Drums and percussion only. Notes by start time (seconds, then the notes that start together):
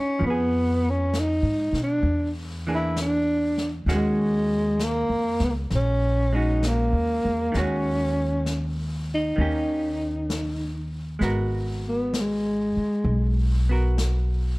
0.22 brush sweep
1.14 brush sweep, snare, hi-hat pedal
1.74 snare
2.04 brush sweep
2.96 brush sweep, snare, hi-hat pedal
3.57 snare
3.88 brush sweep, snare
4.79 brush sweep, snare, hi-hat pedal
5.40 snare
5.70 brush sweep, snare
6.63 brush sweep, snare, hi-hat pedal
7.54 brush sweep, snare
8.46 brush sweep, snare, hi-hat pedal
9.38 brush sweep
10.30 brush sweep, snare, hi-hat pedal
11.21 brush sweep, snare
12.13 brush sweep, snare, hi-hat pedal
13.06 brush sweep
13.98 brush sweep, snare, hi-hat pedal